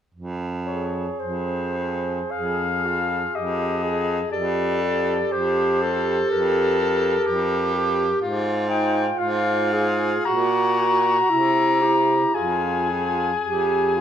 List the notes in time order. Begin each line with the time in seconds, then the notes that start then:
0.14 F2
0.67 G#4 C#5
1.19 F2 C5
1.77 G#4
2.31 F2 G#4 F5
2.86 F4 G#4
3.34 F2 G4 D#5
3.83 G#4
4.32 F2 G4 A4 D5
4.82 G4
5.31 F2 G4 C5
5.82 G4 A4
6.31 F2 A#4
6.81 G4
7.25 F2 G4
7.74 G4
8.20 G#2 F4
8.69 D#4 F4 G5
9.18 G#2 F4 F5
9.72 F4 G#4
10.25 A#2 F#4 A#5
10.79 F#4
11.29 C3 E4
11.82 E4 G4
12.34 F2 F4 G#4 G#5
12.90 F4
13.43 F2 G4
13.96 F4